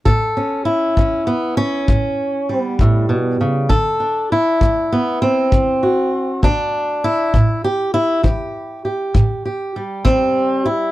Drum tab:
BD |o--o--o--o--|o--o--o--o--|o--o--o--o--|